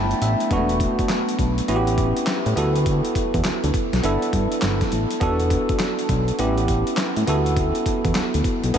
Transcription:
Already playing: G1 A3 B3 D4 E4 G5 A5 B5
0.11 closed hi-hat
0.21 A1 E5, closed hi-hat
0.40 closed hi-hat
0.50 E1 G#3 B3 D4 F#4, kick, closed hi-hat
0.57 A3
0.69 closed hi-hat
0.80 kick, closed hi-hat
0.99 kick, closed hi-hat
1.09 snare, clap, closed hi-hat
1.29 closed hi-hat
1.39 B1, kick, closed hi-hat
1.58 closed hi-hat
1.68 A1 B3 C#4 E4 F#4, closed hi-hat
1.76 G4
1.87 closed hi-hat
1.98 kick, closed hi-hat
2.17 closed hi-hat
2.27 snare, clap, closed hi-hat
2.46 A2, closed hi-hat
2.56 D2 B3 E4 F#4 A4, closed hi-hat
2.76 closed hi-hat
2.86 kick, closed hi-hat
3.05 closed hi-hat
3.15 kick, closed hi-hat
3.34 E2, kick, closed hi-hat
3.44 D2, snare, clap, closed hi-hat
3.64 D2, closed hi-hat
3.74 kick, closed hi-hat
3.93 B1, snare, closed hi-hat
4.03 G1 B3 D4 E4 A4, closed hi-hat
4.22 closed hi-hat
4.33 G2, kick, closed hi-hat
4.52 closed hi-hat
4.62 G1, snare, clap, closed hi-hat
4.81 kick, snare, closed hi-hat
4.92 A1, closed hi-hat
5.11 closed hi-hat
5.20 E1 B3 D4 F#4 A4, kick, closed hi-hat
5.40 closed hi-hat
5.50 kick, closed hi-hat
5.69 kick, closed hi-hat
5.79 snare, clap, closed hi-hat
5.99 closed hi-hat
6.09 B1, kick, closed hi-hat
6.28 closed hi-hat
6.39 A1 B3 C#4 E4 G4, closed hi-hat
6.58 closed hi-hat
6.68 kick, closed hi-hat
6.87 closed hi-hat
6.97 snare, clap, closed hi-hat
7.16 A2, closed hi-hat
7.27 D2 B3 E4 F#4 A4, closed hi-hat
7.46 closed hi-hat
7.57 kick, closed hi-hat
7.75 closed hi-hat
7.86 kick, closed hi-hat
8.05 E2, kick, closed hi-hat
8.15 D2, snare, clap, closed hi-hat
8.34 D2, closed hi-hat
8.44 kick, closed hi-hat
8.63 B1, closed hi-hat
8.74 G1 B3 D4, closed hi-hat

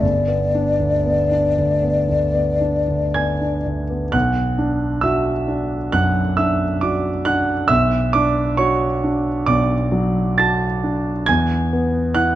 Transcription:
0.01 G1 D5
0.28 B3
0.55 D4
0.80 D2
1.05 B3
1.31 D4
1.58 D2
1.83 B3
2.09 D2
2.34 B3
2.61 D4
2.88 D2
3.14 B3 G#5 G#6
3.41 D4
3.66 D2
3.90 B3
4.12 B1 F#5 F#6
4.58 D4
5.01 F#4 E5 E6
5.48 D4
5.92 F#2 F#5 F#6
6.37 D4 E5 E6
6.81 F#4 D5 D6
7.25 D4 F#5 F#6
7.68 B1 E5 E6
8.13 D4 D5 D6
8.57 F#4 C#5 C#6
9.04 D4
9.46 B1 D5 D6
9.92 F#3
10.38 F#4 A5 A6
10.83 D4
11.26 E2 G#5 G#6
11.73 B3
12.14 E4 F#5 F#6

